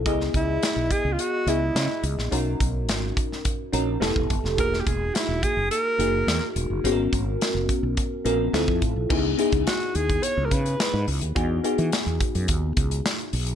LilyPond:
<<
  \new Staff \with { instrumentName = "Alto saxophone" } { \time 4/4 \key cis \dorian \tempo 4 = 106 r8 e'4 gis'16. eis'32 fis'8 e'4 r8 | r1 | ais'16. g'32 gis'8 e'8 gis'8 ais'4. r8 | r1 |
r4 fis'8 gis'8 cis''16. ais'32 b'4 r8 | r1 | }
  \new Staff \with { instrumentName = "FM electric piano" } { \time 4/4 \key cis \dorian <b e' gis' dis''>4. r4 <b e' gis' dis''>4 r8 | <cis' dis' fis' ais'>4. r4 <cis' dis' fis' ais'>8 <b e' g' a'>4 | <ais dis' fis' gis'>4. r4 <ais dis' fis' gis'>4 r8 | <b cis' fis' gis' ais'>4. r4 <b cis' fis' ais'>8 <c' e' f' a'>4 |
<b dis' e' gis'>8 <b dis' e' gis'>4. r2 | <b dis' fis' gis'>8 <b dis' fis' gis'>4. r2 | }
  \new Staff \with { instrumentName = "Fretless electric bass" } { \clef bass \time 4/4 \key cis \dorian cis,8 cis,8 r16 b,,16 r16 cis,16 r8 cis,8 cis16 r16 cis,16 ais,,16 | b,,8 b,,8 gis,,8 r4 ais,,8 f,,16 e,,16 g,,16 f,,16 | e,,8 e,,8 r16 e,,16 r16 fis,,16 r8 fis,,8 e,16 r16 e,,16 fis,,16 | gis,,8 gis,,8 r16 fis,,16 r16 b,,16 r8 ais,,8 d,16 f,16 a,,16 b,,16 |
cis,8 r16 cis,16 r8 dis,8 r16 cis,16 cis8 r16 gis,16 cis,16 dis,16 | e,8 r16 e16 r16 e,16 r16 fis,16 dis,8 cis,8 r8 b,,8 | }
  \new DrumStaff \with { instrumentName = "Drums" } \drummode { \time 4/4 <hh bd>16 sn16 <hh bd>8 <hh sn>8 <hh bd>8 hh8 hh8 <hh sn>8 hh16 sn16 | hh8 <hh bd>8 <hh sn>8 <hh bd>16 sn16 <hh bd>8 hh8 <hh sn>16 bd16 <hh bd>16 sn16 | <hh bd>16 sn16 <hh bd>8 <hh sn>8 <hh bd>8 hh8 hh8 <hh sn>8 hh8 | hh8 <hh bd>8 <hh sn>8 <hh bd>8 <hh bd>8 hh8 <hh sn>16 bd16 <hh bd>8 |
<cymc bd>8 hh16 <hh bd>16 <hh sn>16 hh16 hh16 <hh bd>16 hh8 <hh bd>16 hh16 <hh sn>8 hho16 hh16 | <hh bd>8 hh16 hh16 <hh sn>16 hh16 <hh bd>16 hh16 <hh bd>8 <hh bd>16 hh16 <hh sn>16 hh16 hho16 hh16 | }
>>